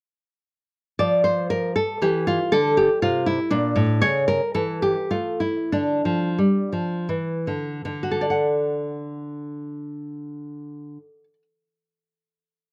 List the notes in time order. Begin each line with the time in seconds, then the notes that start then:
0.99 F3 D5
1.24 C5
1.50 A#4
1.76 A4
2.02 E3 G4
2.27 F4
2.52 D3 A4
2.77 G4
3.02 C3 F4
3.26 E4
3.51 A#2 D4
3.76 A2
4.02 C#3 C#5
4.28 A#4
4.54 E3 A4
4.82 G4
5.11 A3 F4
5.40 E4
5.72 D3 D4
6.05 F3
6.38 G3
6.73 F3
7.09 E3
7.47 D3
7.85 D3
8.03 F#4
8.11 A4
8.21 D5
8.30 F#5